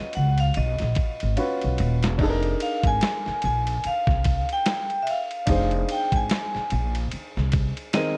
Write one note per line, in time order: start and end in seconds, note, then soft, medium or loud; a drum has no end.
0.00 1.31 C#4 medium
0.00 1.33 F4 medium
0.00 1.33 F#4 medium
0.00 1.34 B4 medium
0.00 0.11 D#5 loud
0.13 0.49 C#2 medium
0.13 0.39 F#5 medium
0.13 ride medium
0.38 0.54 F5 medium
0.38 ride medium
0.54 0.76 B1 loud
0.54 1.34 D#5 medium
0.54 ride medium
0.79 0.94 A#1 medium
0.79 snare soft
0.79 ride soft
0.95 kick loud
0.95 ride medium
1.20 1.35 G#1 medium
1.20 ride soft
1.36 2.19 C#4 medium
1.36 2.19 F4 medium
1.36 2.20 F#4 medium
1.36 2.20 B4 medium
1.36 ride medium
1.62 1.77 B1 medium
1.62 ride soft
1.78 2.04 D#1 loud
1.78 ride medium
2.03 2.20 E1 medium
2.03 snare loud
2.03 ride soft
2.18 2.53 F1 medium
2.18 5.43 D4 medium
2.18 5.44 D#4 medium
2.18 5.45 G#4 medium
2.18 kick loud
2.18 crash medium
2.23 2.28 A4 medium
2.30 5.49 A#4 medium
2.43 ride soft
2.60 2.84 F5 medium
2.60 ride medium
2.84 2.98 G#1 medium
2.84 3.44 G#5 loud
2.84 kick loud
2.84 ride soft
3.01 snare loud
3.01 ride medium
3.26 muted upright bass stroke medium
3.26 snare soft
3.42 3.77 A#1 medium
3.42 3.86 G#5 medium
3.42 ride medium
3.67 ride medium
3.84 4.46 F5 medium
3.84 muted upright bass stroke soft
3.84 ride medium
4.07 4.42 C2 medium
4.07 kick loud
4.07 snare soft
4.24 kick medium
4.24 ride medium
4.49 5.04 G5 medium
4.49 ride soft
4.66 snare loud
4.66 ride medium
4.90 ride soft
5.03 5.07 E5 medium
5.07 5.93 F5 medium
5.07 ride medium
5.31 ride soft
5.46 5.82 F1 loud
5.46 7.89 D4 medium
5.46 7.90 D#4 medium
5.46 7.91 G#4 medium
5.46 kick loud
5.46 ride medium
5.51 7.92 C5 medium
5.71 ride soft
5.89 6.15 G5 medium
5.89 ride medium
6.12 6.27 G#1 medium
6.12 6.92 G#5 medium
6.12 kick medium
6.12 ride soft
6.29 snare loud
6.29 ride medium
6.55 muted upright bass stroke medium
6.55 snare soft
6.70 7.05 A#1 medium
6.70 ride medium
6.95 ride soft
7.11 muted upright bass stroke soft
7.11 ride medium
7.37 7.70 C2 medium
7.37 snare soft
7.52 kick loud
7.52 ride medium
7.77 ride soft
7.93 8.17 D#3 medium
7.93 8.17 C4 medium
7.93 8.17 G#4 medium
7.93 8.17 A#4 medium
7.93 8.17 D#5 loud
7.93 snare loud
7.93 ride medium